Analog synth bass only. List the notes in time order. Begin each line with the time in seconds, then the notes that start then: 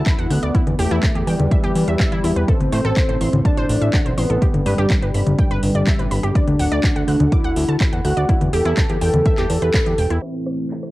0.19 E2
0.30 D2
0.43 D2
0.67 E2
0.79 E1
0.91 E2
1.15 E2
1.27 E2
1.39 E2
1.64 E2
1.76 E2
1.88 E2
2.12 E2
2.24 E2
2.36 E2
2.61 A1
2.72 A2
2.85 A1
3.09 A1
3.21 A1
3.33 A1
3.57 A1
3.69 A1
3.81 A1
4.06 B1
4.18 A1
4.30 A1
4.54 G1
4.66 G2
4.78 G1
5.02 G1
5.14 G1
5.27 G1
5.51 G1
5.63 G1
5.75 G1
5.99 A1
6.11 G1
6.23 G1
6.48 D2
6.60 D1
6.72 D2
6.96 D2
7.08 D2
7.20 D2
7.44 D2
7.56 D2
7.69 D2
7.93 E2
8.05 D2
8.17 D2
8.41 E2
8.53 E1
8.65 E2
8.90 E2
9.01 E2
9.14 E2
9.38 E2
9.50 E2
9.62 E2
9.86 E2
9.98 E1
10.11 E2